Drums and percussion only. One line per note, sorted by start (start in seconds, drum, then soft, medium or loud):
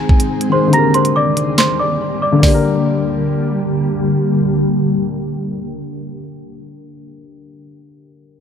0.09 kick medium
0.20 closed hi-hat medium
0.41 closed hi-hat medium
0.73 closed hi-hat medium
0.94 closed hi-hat medium
1.05 closed hi-hat medium
1.37 closed hi-hat medium
1.58 snare loud
1.58 clap medium
1.58 closed hi-hat medium
2.43 kick loud
2.43 snare loud
2.43 open hi-hat medium